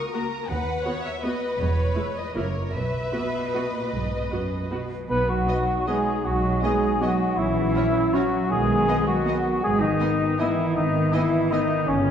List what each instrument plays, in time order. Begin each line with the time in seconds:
Already playing: violin section A#4
0.13 viola section A#3 F#4, violin section A#5
0.48 cello section D#2, double bass section D#2, violin section B4 F#5
0.85 viola section B3 F#4, violin section C#5
1.04 violin section E5
1.23 viola section B3 F#4, violin section B4 D#5
1.60 double bass section E1, cello section E2, violin section C#5
1.96 viola section G#3 E4
2.16 violin section D#5
2.35 double bass section F#1, cello section F#2, viola section A#3 E4, violin section A#4 C#5
2.74 double bass section B1, cello section B2, violin section B4 E5
3.13 cello section B2, viola section B3 F#4
3.54 viola section B3 F#4, violin section D#5
3.74 cello section A#2
3.93 double bass section B1, cello section G#2
4.31 cello section F#2, viola section B3 F#4
4.71 cello section B2, viola section B3 F#4
5.09 double bass section B1, french horn section F#3 D#4, cello section B3, clarinet B4, cor anglais B4, flute B5
5.29 cello section F#3, clarinet F#4, cor anglais F#4, flute F#5
5.47 viola section B3, violin section D#5
5.87 cello section G#3, viola section B3, clarinet G#4, cor anglais G#4, violin section D#5, flute G#5
6.24 double bass section B1, cello section F#3, clarinet F#4, cor anglais F#4, flute F#5
6.62 cello section G#3, viola section B3, clarinet G#4, cor anglais G#4, violin section D#5, flute G#5
7.01 cello section F#3, viola section B3, clarinet F#4, cor anglais F#4, violin section D#5, flute F#5
7.37 double bass section A#1, cello section E3, french horn section F#3 C#4, cor anglais E4, clarinet E4, flute E5
7.74 viola section C#4, violin section C#5 F#5
8.14 cello section F#3, viola section C#4, cor anglais F#4, clarinet F#4, violin section C#5 F#5, flute F#5
8.50 double bass section B1, french horn section D#3 B3, cello section G#3, clarinet G#4, cor anglais G#4, flute G#5
8.87 viola section B3, violin section D#5 F#5
9.06 cello section F#3, clarinet F#4, cor anglais F#4, flute F#5
9.25 viola section B3, violin section D#5 F#5
9.62 double bass section G#1, french horn section D#3 B3, cello section G#3, clarinet G#4, cor anglais G#4, flute G#5
9.80 cello section D#3, clarinet D#4, cor anglais D#4, flute D#5
10.00 viola section B3, violin section D#5 G#5
10.38 cello section E3, viola section B3, clarinet E4, cor anglais E4, violin section D#5 G#5, flute E5
10.75 double bass section G#1, cello section D#3, clarinet D#4, cor anglais D#4, flute D#5
11.13 cello section E3, viola section B3, clarinet E4, cor anglais E4, violin section D#5 G#5, flute E5
11.51 cello section D#3, viola section B3, clarinet D#4, cor anglais D#4, flute D#5, violin section D#5 G#5
11.87 double bass section G1, cello section C#3, french horn section D#3 A#3, clarinet C#4, cor anglais C#4, flute C#5